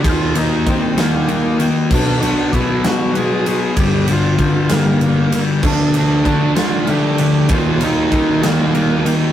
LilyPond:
<<
  \new Staff \with { instrumentName = "Lead electric guitar" } { \time 6/8 \key ees \lydian \tempo 4. = 64 <f' f''>8 <ees' ees''>8 <c' c''>8 <bes bes'>4 r8 | <d' d''>8 <d' d''>8 <e' e''>8 <fis' fis''>8 <gis' gis''>4 | <g' g''>8 <f' f''>4 <bes bes'>4 r8 | <d' d''>8 <d' d''>4 <f' f''>8 <g' g''>4 |
<f' f''>8 <ees' ees''>4 <bes bes'>4 r8 | }
  \new Staff \with { instrumentName = "Distorted electric guitar" } { \clef bass \time 6/8 \key ees \lydian r2. | r2. | r2. | <d f a d'>8 <d f a d'>8 <d f a d'>8 <d f a d'>8 <d f a d'>8 <d f a d'>8 |
<ees g bes ees'>8 <ees g bes ees'>8 <ees g bes ees'>8 <ees g bes ees'>8 <ees g bes ees'>8 <ees g bes ees'>8 | }
  \new Staff \with { instrumentName = "Distorted electric guitar" } { \clef bass \time 6/8 \key ees \lydian <ees bes ees'>8 <ees bes ees'>8 <ees bes ees'>8 <ees bes ees'>8 <ees bes ees'>8 <ees bes ees'>8 | <b, fis b>8 <b, fis b>8 <b, fis b>8 <b, fis b>8 <b, fis b>8 <b, fis b>8 | <g, d g>8 <g, d g>8 <g, d g>8 <g, d g>8 <g, d g>8 <g, d g>8 | <d a d'>8 <d a d'>8 <d a d'>8 <d a d'>8 <d a d'>8 <d a d'>8 |
<ees bes ees'>8 <ees bes ees'>8 <ees bes ees'>8 <ees bes ees'>8 <ees bes ees'>8 <ees bes ees'>8 | }
  \new Staff \with { instrumentName = "Picked electric bass" } { \clef bass \time 6/8 \key ees \lydian ees,4 ees2 | b,,4 b,2 | g,,4 g,2 | d,4 d2 |
ees,4 ees2 | }
  \new DrumStaff \with { instrumentName = "Drums" } \drummode { \time 6/8 <bd cymr>8 cymr8 <bd cymr>8 <cymr sn>8 cymr8 cymr8 | <cymc bd>8 cymr8 <bd cymr>8 <cymr sn>8 cymr8 cymr8 | <bd cymr>8 cymr8 <bd cymr>8 <cymr sn>8 cymr8 cymr8 | <cymc bd>8 cymr8 <bd cymr>8 <cymr sn>8 cymr8 cymr8 |
<bd cymr>8 cymr8 <bd cymr>8 <cymr sn>8 cymr8 cymr8 | }
>>